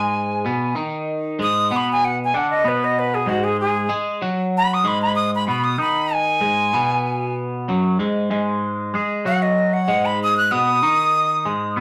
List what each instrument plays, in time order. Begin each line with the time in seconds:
Already playing: clean electric guitar G#2 G#3, flute G#5
0.45 clean electric guitar B2 B3
0.75 clean electric guitar D#3 D#4
1.39 clean electric guitar G#2 G#3, flute D#6
1.71 clean electric guitar B2 B3
1.77 flute B5
1.92 flute G#5
2.05 flute F#5
2.24 flute G#5
2.34 clean electric guitar D3 D4, flute F#5
2.50 flute D#5
2.64 clean electric guitar B2 B3, flute B4
2.84 flute D#5
2.99 flute B4
3.15 flute G#4
3.26 clean electric guitar G#2 G#3, flute F#4
3.44 flute G#4
3.60 flute G#4
3.89 clean electric guitar G#3 G#4
4.22 clean electric guitar F#3 F#4
4.57 flute B5
4.74 flute D#6
4.84 clean electric guitar G#2 G#3, flute B5
5.02 flute B5
5.16 flute D#6
5.35 flute B5
5.47 clean electric guitar B2 B3, flute B5
5.64 flute D#6
5.78 clean electric guitar D#3 D#4, flute B5
6.13 flute G#5
6.40 clean electric guitar G#2 G#3
6.73 clean electric guitar B2 B3
7.68 clean electric guitar F#2 F#3
7.99 clean electric guitar G#2 G#3
8.30 clean electric guitar G#2 G#3
8.94 clean electric guitar G#3 G#4
9.25 clean electric guitar F#3 F#4, flute F#5
9.42 flute D#5
9.73 flute F#5
9.88 clean electric guitar G#2 G#3
10.05 flute B5
10.23 flute D#6
10.37 flute F#6
10.51 clean electric guitar B2 B3, flute D#6
10.83 clean electric guitar D#3 D#4
11.45 clean electric guitar G#2 G#3
11.76 clean electric guitar B2 B3